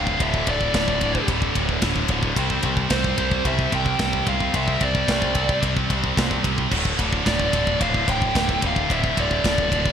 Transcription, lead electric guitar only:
0.00 0.22 F5 medium
0.22 0.49 E5 medium
0.49 1.26 D5 medium
2.91 3.47 C5 medium
3.47 3.74 E5 loud
3.75 4.24 G5 loud
4.29 4.55 F5 medium
4.56 4.83 E5 loud
4.83 5.59 D5 medium
7.28 7.78 D5 medium
7.81 8.09 F5 loud
8.10 8.60 G5 loud
8.67 8.93 F5 medium
8.93 9.19 E5 medium
9.19 9.92 D5 medium

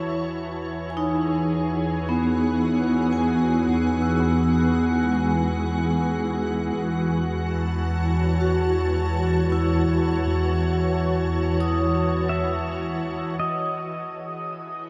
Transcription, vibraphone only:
0.90 3.12 G#5 medium
0.97 2.30 D#4 medium
2.09 4.19 B3 medium
3.13 5.13 G#5 medium
4.02 5.35 E6 soft
4.20 5.25 B3 soft
5.03 9.28 G#3 soft
5.13 9.37 G#5 soft
8.41 9.74 F#4 medium
9.52 13.78 E4 medium
11.60 14.90 D#6 medium

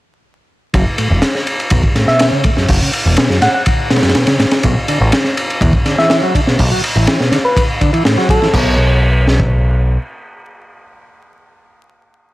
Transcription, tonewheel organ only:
0.74 0.84 F#2 medium
0.98 1.09 A2 medium
1.71 1.82 F#2 medium
1.96 2.06 A2 medium
2.08 2.31 B2 medium
2.33 2.44 C#3 medium
2.44 2.51 A2 loud
2.57 2.67 F#2 medium
2.81 2.91 C#3 medium
3.06 3.29 B2 medium
3.30 3.41 F#2 medium
3.42 3.48 A2 loud
3.91 4.01 B2 medium
4.03 4.15 F#2 loud
4.15 4.26 B2 medium
4.28 4.38 C#3 medium
4.40 4.46 A2 loud
4.64 4.74 B2 medium
4.88 4.99 D3 medium
5.61 5.72 B2 medium
5.86 5.96 D3 medium
5.98 6.21 E3 medium
6.23 6.34 F#3 medium
6.35 6.41 D3 loud
6.47 6.57 B2 medium
6.71 6.82 F#3 medium
6.96 7.19 E3 medium
7.20 7.31 B2 medium
7.32 7.38 D3 loud
7.81 7.91 D3 loud
7.93 8.03 E3 loud
8.05 8.17 A2 medium
8.18 8.29 F#3 loud
8.30 8.40 F#3 medium
8.42 8.48 E3 loud
8.54 8.77 B2 medium

